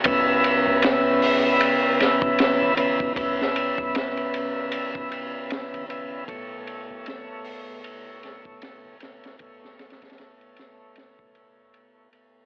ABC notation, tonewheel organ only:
X:1
M:4/4
L:1/8
Q:"Swing 16ths" 1/4=77
K:C#m
V:1 name="Tonewheel organ"
[C,B,e]6- [C,B,e] [C,B,e] | [C,B,e]6- [C,B,e] [C,B,e] | [B,,A,ce]6- [B,,A,ce] [B,,A,ce] | [B,,A,ce]6- [B,,A,ce] [B,,A,ce] |]